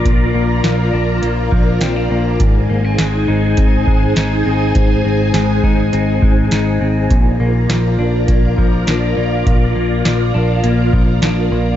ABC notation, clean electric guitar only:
X:1
M:4/4
L:1/16
Q:1/4=102
K:Bbmix
V:1 name="Clean electric guitar"
[B,,F,B,D]2 B,2 F,2 D2 B,2 F,2 C D B,2 | A,,2 B, C A,2 E2 C2 A,2 E2 C2 | A,,2 C2 A,2 E2 C2 A,2 E2 C2 | B,,2 B,2 F,2 D2 B,2 F,2 D2 B,2 |
B,,2 B,2 F,2 D2 B,2 F,2 D2 B,2 |]